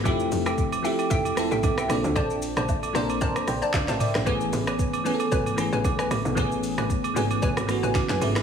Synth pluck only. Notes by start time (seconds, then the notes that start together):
0.05 A4 E5 G5
0.46 A4 E5 G5
0.84 A4 E5 G5
1.10 A4 E5 G5
1.51 A4 E5 G5
1.77 A4 E5 G5
2.16 C5 D5 A5
2.57 C5 D5 A5
2.95 C5 D5 A5
3.21 C5 D5 A5
3.62 C5 D5 A5
3.88 C5 D5 A5
4.26 B4 C#5 G#5
4.67 B4 C#5 G#5
5.05 B4 C#5 G#5
5.32 B4 C#5 G#5
5.73 B4 C#5 G#5
5.99 B4 C#5 G#5
6.37 B4 C#5 G#5
6.78 B4 C#5 G#5
7.16 B4 C#5 G#5
7.42 B4 C#5 G#5
7.83 B4 C#5 G#5
8.09 B4 C#5 G#5